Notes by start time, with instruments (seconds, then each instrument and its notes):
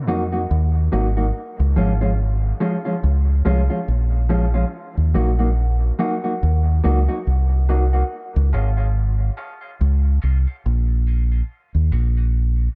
0.07 fingered electric bass F2, clean electric guitar F#3 A#3 D#4 F#4
0.32 clean electric guitar F#3 A#3 D#4 F#4
0.51 fingered electric bass D#2
0.92 fingered electric bass G#1, clean electric guitar F#3 A#3 D#4 F#4
1.17 clean electric guitar F#3 A#3 D#4 F#4
1.60 fingered electric bass C#2
1.76 fingered electric bass G#1, clean electric guitar F3 G#3 C#4 F4
2.01 clean electric guitar F3 G#3 C#4 F4
2.60 clean electric guitar F3 G#3 C#4 F4
2.85 clean electric guitar F3 G#3 C#4 F4
3.04 fingered electric bass C#2
3.45 fingered electric bass C2, clean electric guitar F3 G#3 C#4 F4
3.70 clean electric guitar F3 G#3 C#4 F4
3.88 fingered electric bass A#1
4.29 clean electric guitar F3 G#3 C#4 F4
4.54 clean electric guitar F3 G#3 C#4 F4
4.97 fingered electric bass D#2
5.14 fingered electric bass A#1, clean electric guitar F#3 A#3 D#4 F#4
5.39 clean electric guitar F#3 A#3 D#4 F#4
5.99 clean electric guitar F#3 A#3 D#4 F#4
6.24 clean electric guitar F#3 A#3 D#4 F#4
6.43 fingered electric bass D#2
6.84 fingered electric bass C#2, clean electric guitar F#3 A#3 D#4 F#4
7.08 clean electric guitar F#3 A#3 D#4 F#4
7.27 fingered electric bass C2
7.69 clean electric guitar F#3 A#3 D#4 F#4
7.93 clean electric guitar F#3 A#3 D#4 F#4
8.36 fingered electric bass C#2
8.53 fingered electric bass G#1, clean electric guitar F3 G#3 C#4 F4
8.77 clean electric guitar F3 G#3 C#4 F4
9.37 clean electric guitar F3 G#3 C#4 F4
9.61 clean electric guitar F3 G#3 C#4 F4
9.81 fingered electric bass C#2
10.22 fingered electric bass C2, clean electric guitar F3 G#3 C#4 F4
10.47 clean electric guitar F3 G#3 C#4 F4
10.66 fingered electric bass A#1
11.07 clean electric guitar F3 G#3 C#4 F4
11.32 clean electric guitar F3 G#3 C#4 F4
11.75 fingered electric bass D#2
11.92 fingered electric bass A#1, clean electric guitar F#3 A#3 D#4 F#4
12.17 clean electric guitar F#3 A#3 D#4 F#4